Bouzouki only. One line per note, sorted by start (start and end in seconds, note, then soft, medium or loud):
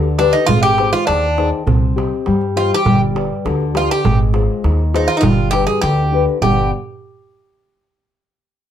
0.19 0.34 D4 medium
0.33 0.47 D#4 medium
0.46 0.61 F4 loud
0.63 0.91 G4 loud
0.93 1.06 F4 medium
1.07 1.49 D4 medium
2.57 2.71 F4 medium
2.74 3.01 G4 loud
3.77 3.91 F4 medium
3.91 4.18 G4 loud
4.96 5.10 D#4 medium
5.08 5.16 F4 medium
5.17 5.24 D#4 medium
5.17 5.50 F4 medium
5.51 5.66 G4 loud
5.67 5.81 G#4 medium
5.81 6.24 G4 medium
6.42 6.70 G4 medium